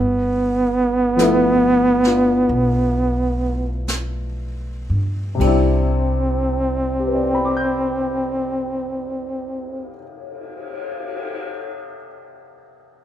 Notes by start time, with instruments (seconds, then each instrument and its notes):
Already playing: upright bass G1, trombone B3
1.16 upright piano F3 A3 B3, brush sweep, snare, hi-hat pedal
1.22 upright piano E4
2.04 upright piano B3 D4 F4, snare
2.49 upright bass B1, brush sweep
3.88 brush sweep, snare, hi-hat pedal
4.90 upright bass G2
5.35 upright piano C3 G3
5.40 upright bass C2, upright piano C4 D4, trombone C4, kick, ride
5.47 upright piano E4
6.46 cymbal swell
7.00 upright piano G4
7.07 upright piano B4
7.15 upright piano D5
7.24 upright piano G5
7.35 upright piano B5
7.45 upright piano D6
7.57 upright piano G6